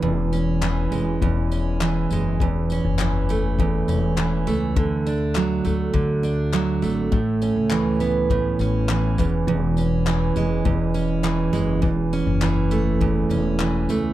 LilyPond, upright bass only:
\new Staff \with { instrumentName = "Upright bass" } { \clef bass \time 4/4 \key a \major \tempo 4 = 102 e,,4. e,,8 e,,4. fis,,8 | e,,8. fis,,4.~ fis,,16 e,,4 cis,8 | d,4. d,8 d,4. gis,,8 | a,,8. cis,4.~ cis,16 a,,4 e,,8 |
e,,4. e,,8 e,,4. fis,,8 | e,,8. fis,,4.~ fis,,16 e,,4 cis,8 | }